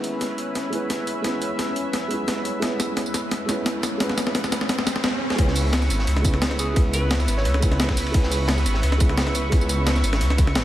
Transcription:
Already playing: felt piano G#3 B3 C#4 E4 B4, analog synth pad C#4 B4 E5, riser
0.04 closed hi-hat
0.21 snare, closed hi-hat
0.38 closed hi-hat
0.55 snare, closed hi-hat
0.70 felt piano G#3 B3 C#4 E4, closed hi-hat
0.75 felt piano B4
0.90 snare, closed hi-hat
1.07 closed hi-hat
1.22 felt piano G#3 B3 C#4 E4, snare, closed hi-hat
1.27 felt piano B4
1.42 closed hi-hat
1.59 snare, closed hi-hat
1.76 closed hi-hat
1.93 snare, closed hi-hat
2.08 felt piano G#3 B3 C#4, closed hi-hat
2.12 felt piano E4 B4
2.28 snare, closed hi-hat
2.45 closed hi-hat
2.60 felt piano G#3 B3 C#4, snare, closed hi-hat
2.64 felt piano E4 B4
2.80 snare, closed hi-hat, tambourine
2.97 snare, closed hi-hat
3.06 tambourine
3.14 snare, closed hi-hat, tambourine
3.31 snare, closed hi-hat
3.46 felt piano G#3 B3 C#4, snare, closed hi-hat, tambourine
3.50 felt piano E4 B4
3.66 snare, closed hi-hat
3.83 snare, closed hi-hat, tambourine
3.98 felt piano G#3 B3 C#4 E4, snare, closed hi-hat
4.03 felt piano B4
4.09 snare
4.18 snare, closed hi-hat, tambourine
4.27 snare
4.35 snare, closed hi-hat
4.44 snare, tambourine
4.52 snare, closed hi-hat, tambourine
4.61 snare
4.69 snare, closed hi-hat
4.79 snare
4.87 snare, closed hi-hat, tambourine
4.96 snare
5.04 snare
5.30 snare
5.36 detuned saw bass C#2, felt piano G#3 B3 C#4, analog synth pad B4 E5 C#6, kick, closed hi-hat, ride
5.40 felt piano E4 B4
5.48 snare
5.55 closed hi-hat, open hi-hat, tambourine
5.73 snare, closed hi-hat, ride
5.82 snare, tambourine
5.90 detuned saw bass G#1, closed hi-hat, ride, tambourine
5.99 snare
6.07 detuned saw bass C#2, closed hi-hat, ride
6.16 snare
6.22 felt piano G#3 B3 C#4, kick, closed hi-hat, ride, tambourine
6.26 felt piano E4 B4
6.34 snare
6.42 snare, closed hi-hat, ride
6.51 snare
6.59 alto saxophone G#4, closed hi-hat, ride, tambourine
6.74 detuned saw bass C#2, felt piano G#3 B3 C#4, kick, closed hi-hat, ride
6.78 felt piano E4 B4
6.93 alto saxophone B4, closed hi-hat, ride, tambourine
7.11 snare, closed hi-hat, ride
7.20 snare, tambourine
7.28 detuned saw bass G#1, closed hi-hat, ride, tambourine
7.37 alto saxophone C#5, snare
7.45 detuned saw bass C#2, closed hi-hat, ride
7.54 snare
7.60 felt piano G#3 B3 C#4 E4, kick, closed hi-hat, ride, tambourine
7.65 felt piano B4
7.72 snare
7.80 snare, closed hi-hat, ride
7.89 kick, snare
7.97 closed hi-hat, open hi-hat, tambourine
8.06 ride
8.12 detuned saw bass C#2, felt piano G#3 B3 C#4 E4, kick, closed hi-hat, ride
8.17 felt piano B4
8.23 snare
8.32 closed hi-hat, open hi-hat, tambourine
8.48 snare, closed hi-hat, ride
8.58 snare, tambourine
8.66 detuned saw bass G#1, closed hi-hat, ride, tambourine
8.74 snare
8.83 detuned saw bass C#2, closed hi-hat, ride
8.92 snare
8.98 felt piano G#3 B3 C#4, kick, closed hi-hat, ride, tambourine
9.02 felt piano E4 B4
9.09 snare
9.18 snare, closed hi-hat, ride
9.27 snare
9.35 closed hi-hat, ride, tambourine
9.49 detuned saw bass C#2, felt piano G#3 B3 C#4, kick, closed hi-hat, ride
9.54 felt piano E4 B4
9.61 tambourine
9.69 closed hi-hat, ride, tambourine
9.86 snare, closed hi-hat, ride
9.96 snare, tambourine
10.04 detuned saw bass G#1, closed hi-hat, ride, tambourine
10.13 snare, closed hi-hat
10.21 detuned saw bass C#2, closed hi-hat, ride
10.30 snare
10.38 kick, closed hi-hat, ride, tambourine
10.47 snare
10.55 detuned saw bass G#1, snare, closed hi-hat, ride

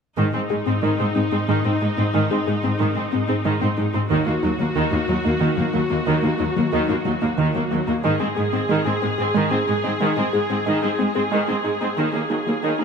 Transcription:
0.17 cello section G#2, viola section D#3 D#4, synth pluck G#3
0.34 cello section G#2, viola section C4, synth pluck G#4
0.50 cello section G#2, viola section G#3, synth pluck G#4
0.66 cello section G#2, synth pluck C4, viola section C4
0.83 cello section G#2, viola section D#3, synth pluck G#3
0.99 cello section G#2, viola section C4, synth pluck G#4
1.16 cello section G#2, viola section G#3, synth pluck C4
1.32 cello section G#2, viola section C4, synth pluck G#4
1.48 cello section G#2, viola section D#3, synth pluck G#3
1.65 cello section G#2, viola section C4, synth pluck C4
1.81 cello section G#2, viola section G#3, synth pluck D#4
1.98 cello section G#2, viola section C4, synth pluck D#4
2.14 cello section G#2, viola section D#3, synth pluck G#3
2.31 cello section G#2, viola section C4, synth pluck G#4
2.47 cello section G#2, viola section G#3, synth pluck G#4
2.63 cello section G#2, viola section C4, synth pluck C4
2.79 cello section G#2, viola section D#3, synth pluck G#3
2.95 cello section G#2, viola section C4, synth pluck G#4
3.12 cello section G#2, viola section G#3, synth pluck C4
3.28 cello section G#2, viola section C4, synth pluck G#4
3.45 cello section G#2, viola section D#3, synth pluck G#3
3.61 cello section G#2, viola section C4, synth pluck C4
3.78 cello section G#2, viola section G#3, synth pluck D#4
3.94 cello section G#2, viola section C4, synth pluck D#4
4.10 cello section D#2, synth pluck D#3, viola section D#3 F#4
4.26 cello section D#2, viola section A#3, synth pluck D#4
4.43 cello section D#2, viola section F#3, synth pluck D#4
4.59 cello section D#2, synth pluck F#3, viola section A#3
4.76 cello section D#2, synth pluck D#3, viola section D#3
4.92 cello section D#2, viola section A#3, synth pluck D#4
5.08 cello section D#2, synth pluck F#3, viola section F#3
5.25 cello section D#2, viola section A#3, synth pluck D#4
5.41 cello section D#2, synth pluck D#3, viola section D#3
5.57 cello section D#2, synth pluck F#3, viola section A#3
5.73 cello section D#2, viola section F#3, synth pluck A#3
5.90 cello section D#2, viola section A#3, synth pluck A#3
6.07 cello section D#2, synth pluck D#3, viola section D#3
6.23 cello section D#2, viola section A#3, synth pluck D#4
6.40 cello section D#2, viola section F#3, synth pluck D#4
6.56 cello section D#2, synth pluck F#3, viola section A#3
6.72 cello section D#2, viola section D#3, synth pluck D#3
6.89 cello section D#2, viola section A#3, synth pluck D#4
7.05 cello section D#2, synth pluck F#3, viola section F#3
7.22 cello section D#2, viola section A#3, synth pluck D#4
7.38 cello section D#2, synth pluck D#3, viola section D#3
7.55 cello section D#2, synth pluck F#3, viola section A#3
7.71 cello section D#2, viola section F#3, synth pluck A#3
7.87 cello section D#2, synth pluck A#3, viola section A#3
8.04 cello section G#2, viola section D#3 G#4, synth pluck G#3
8.20 cello section G#2, viola section C4, synth pluck G#4
8.36 cello section G#2, viola section G#3, synth pluck G#4
8.53 cello section G#2, synth pluck C4, viola section C4
8.69 cello section G#2, viola section D#3, synth pluck G#3
8.85 cello section G#2, viola section C4, synth pluck G#4
9.02 cello section G#2, viola section G#3, synth pluck C4
9.18 cello section G#2, viola section C4, synth pluck G#4
9.34 cello section G#2, viola section D#3, synth pluck G#3
9.51 cello section G#2, synth pluck C4, viola section C4
9.67 cello section G#2, viola section G#3, synth pluck D#4
9.84 cello section G#2, viola section C4, synth pluck D#4
10.00 cello section G#2, viola section D#3, synth pluck G#3
10.17 cello section G#2, viola section C4, synth pluck G#4
10.33 cello section G#2, viola section G#3, synth pluck G#4
10.50 cello section G#2, synth pluck C4, viola section C4
10.66 cello section G#2, viola section D#3, synth pluck G#3
10.82 cello section G#2, viola section C4, synth pluck G#4
10.99 cello section G#2, viola section G#3, synth pluck C4
11.15 cello section G#2, viola section C4, synth pluck G#4
11.32 cello section G#2, viola section D#3, synth pluck G#3
11.48 cello section G#2, synth pluck C4, viola section C4
11.64 cello section G#2, viola section G#3, synth pluck D#4
11.81 cello section G#2, viola section C4, synth pluck D#4
11.97 cello section D#2, synth pluck D#3, viola section D#3
12.14 cello section D#2, viola section A#3, synth pluck D#4
12.30 cello section D#2, viola section F#3, synth pluck D#4
12.47 cello section D#2, synth pluck F#3, viola section A#3
12.63 cello section D#2, synth pluck D#3, viola section D#3
12.79 cello section D#2, viola section A#3, synth pluck D#4

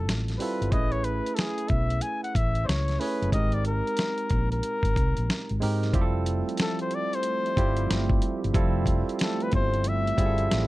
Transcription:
Already playing: tine electric piano G3 C4 E4 F4 A4, flugelhorn A4
0.08 fingered electric bass A1, snare, closed hi-hat
0.28 snare, closed hi-hat
0.37 tine electric piano G3 C4 E4, flugelhorn B4, open hi-hat
0.41 tine electric piano F4 A4
0.61 fingered electric bass G1, closed hi-hat
0.71 fingered electric bass A1, tine electric piano A3 C#4 E4 G#4 B4, flugelhorn D#5, kick, closed hi-hat
0.92 flugelhorn C#5, closed hi-hat
1.04 flugelhorn B4, closed hi-hat
1.26 closed hi-hat
1.34 flugelhorn G#4 A4, closed hi-hat
1.39 snare
1.58 closed hi-hat
1.68 fingered electric bass B1, flugelhorn E5, kick, closed hi-hat
1.90 closed hi-hat
2.01 flugelhorn G#5, closed hi-hat
2.24 flugelhorn F#5, closed hi-hat
2.35 fingered electric bass A1, flugelhorn E5, kick, closed hi-hat
2.55 closed hi-hat
2.64 flugelhorn C5 C#5
2.69 fingered electric bass C#2, snare, closed hi-hat
2.88 snare, closed hi-hat
2.99 tine electric piano A3 C#4 E4 G#4 C#5, flugelhorn B4, open hi-hat
3.22 fingered electric bass F#1, closed hi-hat
3.32 fingered electric bass G#1, tine electric piano G#3 C4 D#4 G4 A#4, flugelhorn D#5, kick, closed hi-hat
3.52 flugelhorn D5, closed hi-hat
3.65 flugelhorn A#4, closed hi-hat
3.87 closed hi-hat
3.97 snare, closed hi-hat
4.18 closed hi-hat
4.30 fingered electric bass A#1, kick, closed hi-hat
4.52 flugelhorn A#4, closed hi-hat
4.63 closed hi-hat
4.83 fingered electric bass G#1, kick, closed hi-hat
4.96 fingered electric bass C2, kick, closed hi-hat
5.17 fingered electric bass A#1, closed hi-hat
5.30 snare, closed hi-hat
5.49 fingered electric bass G#1, closed hi-hat
5.60 fingered electric bass G#2, tine electric piano G#3 C4 D#4 G4 A#4, open hi-hat
5.83 snare, closed hi-hat
5.93 fingered electric bass F1, analog synth pad F3 A3 G4 E5, tine electric piano G3 C4 E4 F4 G4, kick, closed hi-hat
6.01 tine electric piano A4
6.26 closed hi-hat
6.49 closed hi-hat
6.57 snare, closed hi-hat
6.62 flugelhorn A4
6.79 flugelhorn C5, closed hi-hat
6.91 closed hi-hat
6.95 flugelhorn D5
7.13 flugelhorn C5, closed hi-hat
7.23 closed hi-hat
7.46 closed hi-hat
7.56 fingered electric bass G1, tine electric piano G3 C4 E4 F4 G4, kick, closed hi-hat
7.77 closed hi-hat
7.91 fingered electric bass G1, snare, closed hi-hat
8.10 kick
8.22 closed hi-hat
8.44 fingered electric bass G1, closed hi-hat
8.54 fingered electric bass F1, tine electric piano G3 C4 E4 F4 A4, kick, closed hi-hat
8.86 kick, closed hi-hat
9.09 closed hi-hat
9.19 flugelhorn A4, snare, closed hi-hat
9.40 flugelhorn B4, closed hi-hat
9.52 fingered electric bass G1, flugelhorn C5, kick, closed hi-hat
9.74 closed hi-hat
9.84 closed hi-hat
9.88 flugelhorn E5
10.07 closed hi-hat
10.17 fingered electric bass G1, tine electric piano G3 C4 E4 F4 G#4, kick, closed hi-hat
10.26 tine electric piano A4
10.38 closed hi-hat
10.51 fingered electric bass A1, snare, closed hi-hat

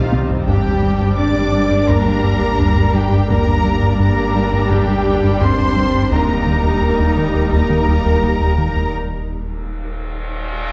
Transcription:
Already playing: double bass section C2, sub bass C2, ambient pad D#3 C4 G4 C5, french horn section F3, viola section G3 D#4, cello section F4, violin section F5
0.12 analog synth bass C3, taiko high
0.30 analog synth bass C2, taiko low
0.47 sub bass G1, double bass section G2, analog synth bass G2, french horn section G3, viola section G3 D4, ambient pad G3 D4 G4 A#4, cello section G4, violin section G5, taiko
0.66 analog synth bass G2
0.83 analog synth bass G3
1.01 analog synth bass G2
1.18 analog synth bass G2, french horn section D4, cello section D5, violin section D6
1.36 analog synth bass G2
1.53 analog synth bass G3
1.71 analog synth bass G2
1.89 analog synth bass G2, french horn section A#3, cello section A#4, violin section A#5, taiko
2.06 analog synth bass G3
2.24 analog synth bass G2
2.41 analog synth bass G2
2.59 analog synth bass G2, taiko
2.77 analog synth bass G2
2.95 analog synth bass G3, french horn section G3, cello section G4, violin section G5
3.12 analog synth bass G2
3.29 sub bass G1, analog synth bass G2, double bass section G2, viola section G3 D4, ambient pad G3 D4 G4 A#4, french horn section A#3, cello section A#4, violin section A#5, taiko
3.47 analog synth bass G2
3.65 analog synth bass G3
3.83 analog synth bass G2
4.00 analog synth bass G2, french horn section A#3, cello section A#4, violin section A#5
4.18 analog synth bass G2
4.36 analog synth bass G3
4.53 analog synth bass G2
4.71 analog synth bass G2, french horn section G3, cello section G4, violin section G5, taiko
4.88 analog synth bass G3
5.06 analog synth bass G2
5.24 analog synth bass G2
5.41 analog synth bass G2, french horn section C4, cello section C5, violin section C6, taiko
5.59 analog synth bass G2
5.76 analog synth bass G3
5.94 analog synth bass G2
6.12 sub bass D#1, analog synth bass D#2, double bass section D#2, viola section G3 D#4, ambient pad G3 D#4 G4 A#4, french horn section A#3, cello section A#4, violin section A#5, taiko
6.29 analog synth bass D#2
6.46 analog synth bass D#3
6.64 analog synth bass D#2
6.82 analog synth bass D#2
7.00 analog synth bass D#2
7.17 analog synth bass D#3
7.35 analog synth bass D#2
7.52 analog synth bass D#2, french horn section A#3, cello section A#4, violin section A#5, taiko
7.70 analog synth bass D#3
7.88 analog synth bass D#2
8.06 analog synth bass D#2
8.23 analog synth bass D#2, taiko
8.40 analog synth bass D#2
8.58 analog synth bass D#3
8.76 analog synth bass D#2
8.95 sub bass D#1, reverse cymbal

